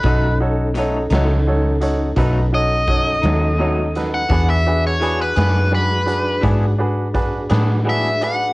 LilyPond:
<<
  \new Staff \with { instrumentName = "Overdriven electric guitar" } { \time 12/8 \key b \mixolydian \tempo 4. = 56 b'8 r2. dis''2~ dis''16 fis''16~ | fis''16 e''8 cis''8 b'8. b'4 r2 e''8 fis''8 | }
  \new Staff \with { instrumentName = "Upright piano" } { \time 12/8 \key b \mixolydian <dis' fis' a' dis''>8 <dis' fis' a' cis''>8 <dis' fis' a' cis''>8 <dis' fis' a' cis''>8 <dis' fis' a' cis''>8 <dis' fis' a' cis''>8 <dis' fis' a' b'>8 <dis' fis' a' cis''>8 <dis' fis' a' cis''>8 <dis' fis' a' cis''>8 <dis' fis' a' cis''>8 <dis' fis' a' b'>8 | <d' fis' gis' b'>8 <d' fis' gis' b'>8 <d' fis' gis' b'>8 <d' fis' gis' b'>8 <d' fis' gis' b'>8 <d' fis' gis' b'>8 <d' fis' gis' b'>8 <d' fis' gis' b'>8 <d' fis' gis' b'>8 <d' fis' gis' b'>8 <d' fis' gis' b'>8 <d' fis' gis' b'>8 | }
  \new Staff \with { instrumentName = "Tonewheel organ" } { \time 12/8 \key b \mixolydian <cis' dis' a'>1. | <d' fis' gis'>1. | }
  \new Staff \with { instrumentName = "Clean electric guitar" } { \time 12/8 \key b \mixolydian <b, fis a dis'>8 r8 <b, fis a dis'>8 <fis a dis'>8 r4 <b, fis a dis'>8 r4 <fis a dis'>8 <b, fis a dis'>8 r8 | <e b d' gis'>8 r8 <e b d' gis'>8 <b d' gis'>8 r4 <e b d' gis'>8 r4 <b d' gis'>8 <e b d' gis'>8 r8 | }
  \new Staff \with { instrumentName = "Fingered electric bass" } { \clef bass \time 12/8 \key b \mixolydian b,,4. cis,4. b,,4. dis,4. | e,4. fis,4. gis,4. a,4. | }
  \new DrumStaff \with { instrumentName = "Drums" } \drummode { \time 12/8 <hh bd>4 hh8 <hh sn>4 hh8 <hh bd>4 <hh bd>8 <hh sn>4 <hh sn>8 | <hh bd>4 hh8 <hh sn>4 hh8 <hh bd>4 <hh bd>8 <hh sn>4 hh8 | }
>>